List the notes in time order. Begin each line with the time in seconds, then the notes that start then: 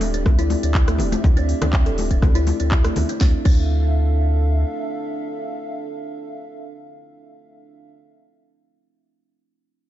Already playing: D1 C4 G4 D5 E5
0.01 open hi-hat, high conga, shaker
0.14 D4, closed hi-hat, shaker
0.26 D2, kick, cross-stick, high conga, low conga, shaker
0.39 E4, closed hi-hat, shaker
0.50 open hi-hat, high conga, shaker
0.63 D2 D4, closed hi-hat, shaker
0.75 kick, clap, shaker
0.87 A3, cross-stick, closed hi-hat, high conga, shaker
0.98 D1, open hi-hat, low conga, shaker
1.12 C4, closed hi-hat, high conga, shaker
1.24 D2, kick, low conga, shaker
1.37 D4, closed hi-hat, shaker
1.49 open hi-hat, shaker
1.62 D2 D4, cross-stick, closed hi-hat, high conga, low conga, shaker
1.73 kick, clap, shaker
1.86 D1 A4, closed hi-hat, shaker
1.98 open hi-hat, high conga, shaker
2.11 D4, kick, closed hi-hat, shaker
2.22 D2, kick, cross-stick, high conga, low conga, shaker
2.35 E4, closed hi-hat, shaker
2.47 open hi-hat, high conga, shaker
2.60 D2 D4, closed hi-hat, shaker
2.72 kick, clap, shaker
2.84 A3, cross-stick, closed hi-hat, shaker
2.96 D2, open hi-hat, low conga, shaker
3.09 C4, closed hi-hat, shaker
3.21 D2 D4 A4 E5 F5, kick, snare
3.45 D2 D4, kick, crash